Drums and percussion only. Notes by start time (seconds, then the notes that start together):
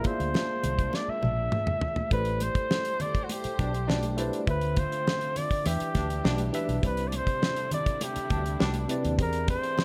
0.04 kick, closed hi-hat, muted conga
0.20 closed hi-hat
0.34 snare, high conga
0.63 closed hi-hat, low conga
0.79 kick, closed hi-hat
0.93 snare, muted conga
1.22 high tom, muted conga
1.52 mid tom, high conga
1.67 mid tom, high conga
1.81 floor tom
1.96 floor tom, high conga
2.11 kick, closed hi-hat
2.25 closed hi-hat
2.40 closed hi-hat, muted conga
2.55 kick, closed hi-hat
2.71 snare, high conga
2.85 closed hi-hat
3.00 closed hi-hat, low conga
3.15 kick, closed hi-hat
3.29 closed hi-hat, muted conga
3.44 closed hi-hat
3.59 kick, closed hi-hat, muted conga
3.74 closed hi-hat
3.89 snare, high conga
4.03 closed hi-hat, high conga
4.18 closed hi-hat
4.33 closed hi-hat
4.47 kick, closed hi-hat, muted conga
4.61 closed hi-hat
4.76 kick, closed hi-hat, muted conga
4.92 closed hi-hat
5.07 snare, high conga
5.21 closed hi-hat
5.36 closed hi-hat, low conga
5.51 kick, closed hi-hat
5.66 closed hi-hat, muted conga
5.80 closed hi-hat
5.95 kick, snare, closed hi-hat, muted conga
6.10 closed hi-hat
6.25 snare, high conga
6.38 closed hi-hat, high conga
6.54 closed hi-hat
6.69 closed hi-hat
6.83 kick, closed hi-hat
6.97 closed hi-hat
7.12 closed hi-hat, muted conga
7.27 kick, closed hi-hat
7.42 snare, high conga
7.56 closed hi-hat
7.71 closed hi-hat, low conga
7.86 kick, closed hi-hat
8.01 closed hi-hat, muted conga
8.16 closed hi-hat
8.30 kick, closed hi-hat, muted conga
8.46 closed hi-hat
8.60 snare, high conga
8.74 closed hi-hat, high conga
8.89 closed hi-hat
9.05 closed hi-hat
9.19 kick, closed hi-hat
9.33 closed hi-hat
9.48 kick, closed hi-hat, muted conga
9.64 closed hi-hat
9.78 snare, high conga